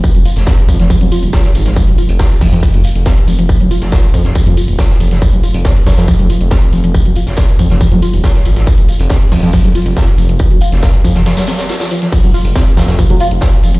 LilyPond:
<<
  \new Staff \with { instrumentName = "Analog synth lead" } { \clef bass \time 4/4 \key f \phrygian \tempo 4 = 139 f16 ges16 f'16 r16 c'16 r16 f16 f16 f16 ges16 f'16 r16 c'16 r16 f16 f16 | f16 ges16 f'16 r16 c'16 r16 f16 f16 f16 ges16 f'16 r16 c'16 r16 f16 f16 | f16 ges16 f'16 r16 c'16 r16 f16 f16 f16 ges16 f'16 r16 c'16 r16 f16 f16 | f16 ges16 f'16 r16 c'16 r16 f16 f16 f16 ges16 f'16 r16 c'16 r16 f16 f16 |
f16 ges16 f'16 r16 c'16 r16 f16 f16 f16 ges16 f'16 r16 c'16 r16 f16 f16 | f16 ges16 f'16 r16 c'16 r16 f16 f16 f16 ges16 f'16 r16 c'16 r16 f16 f16 | f16 ges16 f'16 r16 c'16 r16 f16 f16 f16 ges16 c'16 r16 f'16 f16 f16 f16 | f16 ges16 f'16 r16 c'16 r16 f16 f16 f16 ges16 f'16 r16 c'16 r16 f16 f16 | }
  \new Staff \with { instrumentName = "Detuned saw bass" } { \clef bass \time 4/4 \key f \phrygian r16 f,,16 r16 f,,16 r8 f,16 f,,16 r16 f,16 r16 ees,,16 r8 aes,,16 aes,,16 | r16 f,,16 r16 f,,16 r8 f,,16 f,16 r16 f,,16 r16 f,,16 r8 f,,16 f,,16 | r16 f,,16 r16 f,,16 r8 f,16 f,,16 r16 f,16 r16 ees,,16 r8 f,,16 f,,16 | r16 f,,16 r16 f,,16 r8 f,,16 f,16 r16 f,,16 r16 f,,16 r8 f,,16 f,,16 |
r16 f,,16 r16 f,,16 r8 f,16 f,,16 r16 f,16 r16 ees,,16 r8 aes,,16 aes,,16 | r16 f,,16 r16 f,,16 r8 f,,16 f,16 r16 f,,16 r16 f,,16 r8 f,,16 f,,16 | r16 f,,16 r16 f,,16 r8 f,16 f,,16 r2 | r16 f,,16 r16 f,,16 r8 f,,16 f,16 r16 f,,16 r16 f,,16 r8 f,,16 f,,16 | }
  \new DrumStaff \with { instrumentName = "Drums" } \drummode { \time 4/4 <hh bd tamb>16 hh16 <hho tamb>16 <hh sn>16 <hh bd sn tamb>16 hh16 <hho bd tamb>16 <hh sn>16 <hh bd tamb>16 hh16 <hho tamb>16 hho16 <hh bd sn tamb>16 <hh sn>16 <hho tamb>16 <hh sn>16 | <hh bd tamb>16 hh16 <hho tamb>16 hh16 <hh bd sn tamb>16 hho16 <hho bd>16 hh16 <hh bd tamb>16 hh16 <hho tamb>16 hh16 <hh bd sn tamb>16 hh16 <hho tamb>16 hh16 | <hh bd tamb>16 hh16 <hho tamb>16 <hh sn>16 <hh bd sn tamb>16 hh16 <hho bd tamb>16 <hh sn>16 <hh bd tamb>16 hh16 <hho tamb>16 hho16 <hh bd sn tamb>16 <hh sn>16 <hho tamb>16 <hh sn>16 | <hh bd tamb>16 hh16 <hho tamb>16 hh16 <hh bd sn tamb>16 hho16 <hho bd sn tamb>16 <hh sn tamb>16 <hh bd tamb>16 hh16 <hho tamb>16 hh16 <hh bd sn tamb>16 hh16 <hho tamb>16 hh16 |
<hh bd tamb>16 hh16 <hho tamb>16 <hh sn>16 <hh bd sn tamb>16 hh16 <hho bd tamb>16 <hh sn>16 <hh bd tamb>16 hh16 <hho tamb>16 hho16 <hh bd sn tamb>16 <hh sn>16 <hho tamb>16 <hh sn>16 | <hh bd tamb>16 hh16 <hho tamb>16 hh16 <hh bd sn tamb>16 hho16 <hho bd>16 hh16 <hh bd tamb>16 hh16 <hho tamb>16 hh16 <hh bd sn tamb>16 hh16 <hho tamb>16 hh16 | <hh bd tamb>16 hh16 <hho tamb>16 <hh sn>16 <hh bd sn tamb>16 hh16 <hho bd tamb>16 <hh sn>16 <hh sn tamb>16 <hh sn tamb>16 <hho sn tamb>16 <hho sn tamb>16 <hh sn tamb>16 <hh sn tamb>16 <hho tamb>16 <hh sn>16 | <cymc hh bd tamb>16 hh16 <hho tamb>16 hh16 <hh bd sn tamb>16 hho16 <hho bd sn tamb>16 <hh sn tamb>16 <hh bd tamb>16 hh16 <hho tamb>16 hh16 <hh bd sn tamb>16 hh16 <hho tamb>16 hh16 | }
>>